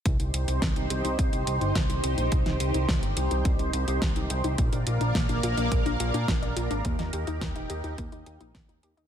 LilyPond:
<<
  \new Staff \with { instrumentName = "Analog synth pad" } { \time 4/4 \key c \minor \tempo 4 = 106 <ees' g' c''>1~ | <ees' g' c''>1 | <bes bes' d'' f''>1 | <ees' g'>1 | }
  \new Staff \with { instrumentName = "Synth arpeggio sound" } { \time 4/4 \key c \minor c'16 ees'16 g'16 ees'16 c'16 ees'16 g'16 ees'16 c'16 ees'16 g'16 ees'16 c'16 ees'16 g'16 ees'16 | c'16 ees'16 g'16 ees'16 r16 ees'16 g'16 ees'16 c'16 ees'16 g'16 ees'16 c'16 ees'16 g'16 ees'16 | bes16 d'16 f'16 d'16 bes16 d'16 f'16 d'16 bes16 d'16 f'16 d'16 bes16 d'16 f'16 d'16 | bes16 ees'16 g'16 ees'16 bes16 ees'16 g'16 ees'16 bes16 ees'16 g'16 ees'16 bes16 ees'16 g'16 ees'16 | }
  \new Staff \with { instrumentName = "Analog synth bass" } { \clef bass \time 4/4 \key c \minor c,16 c,16 c,16 c,16 c,16 c,16 c,16 c,16 c,16 c,16 c,16 g,,16 c,16 c,16 c,16 bes,,16 | c,16 c,16 c,16 c,16 c,16 g,,16 c,16 c,16 c,16 c,16 c,16 c,16 c,16 c,16 c,16 c,16 | bes,,16 bes,,16 bes,,16 bes,,16 bes,,16 bes,,16 bes,,16 bes,,16 bes,,16 bes,,16 bes,,16 bes,16 bes,,16 bes,,16 bes,,16 aes,,16 | ees,16 ees,16 ees,16 ees,16 ees,16 ees,,16 ees,16 ees,16 ees,16 ees,16 ees,16 bes,,16 bes,,16 ees,16 ees,16 ees,16 | }
  \new DrumStaff \with { instrumentName = "Drums" } \drummode { \time 4/4 <hh bd>16 hh16 hh16 hh16 <hh bd sn>16 hh16 hh16 hh16 <hh bd>16 hh16 hh16 hh16 <hh bd sn>16 hh16 hh16 hh16 | <hh bd>16 <hh sn>16 hh16 hh16 <hh bd sn>16 hh16 hh16 hh16 <hh bd>16 hh16 hh16 hh16 <hh bd sn>16 hh16 hh16 hh16 | <hh bd>16 hh16 hh16 hh16 <hh bd sn>16 hh16 hh16 hh16 <hh bd>16 hh16 hh16 hh16 <hh bd sn>16 hh16 hh16 hh16 | <hh bd>16 <hh sn>16 hh16 hh16 <hh bd sn>16 hh16 hh16 hh16 <hh bd>16 hh16 hh16 hh16 <hh bd sn>16 hh16 hh16 hh16 | }
>>